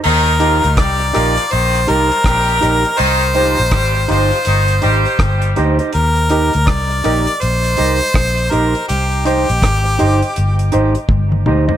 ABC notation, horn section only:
X:1
M:4/4
L:1/16
Q:"Swing 16ths" 1/4=81
K:Eb
V:1 name="Horn section"
[E,E]2 [F,F]2 [G,G]2 [F,F]2 [E,E]2 [F,F]2 [G,G]3 z | [E,E]2 [F,F]2 [G,G]2 [F,F]2 [E,E]2 [G,G]4 z2 | z16 | z16 |]